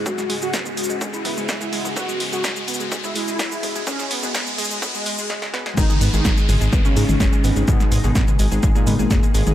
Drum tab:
CC |--------------------------------|--------------------------------|--------------------------------|x-------------------------------|
HH |----o-------o-------o-------o---|----o-------o-------o-------o---|----o-------o-------o-----------|----o-------o-------o-------o---|
SH |x-x---x-x-x-xxx-x-x-x-x-x-x-x-x-|x-x---x-x-x-xxx-x-x-x-x-x-x-x-x-|x-x-x-x-x-x-xxx-x-x-x-x---------|x-x-x-x-x-x-x-x-x-x-x-x-x-x-x-x-|
SD |--o-----o---------------o-------|--------o-------o-------o-------|--o-----o---------------o-o-o-o-|--------o-------o-------o-------|
T2 |o---------o---------o---------o-|--------o---------o---------o---|------o---------o---------------|--o---------o---------o---------|
BD |o-------o-------o-------o-------|o-------o-------o-------o-------|o-------o-------o---------------|o-------o-------o-------o-------|

CC |--------------------------------|
HH |----o-------o-------o-------o---|
SH |x-x-x-x-x-x-x-x-x-x-x-x-x-x-x-x-|
SD |--o-----o---------------o-------|
T2 |o---------o---------o---------o-|
BD |o-------o-------o-------o-------|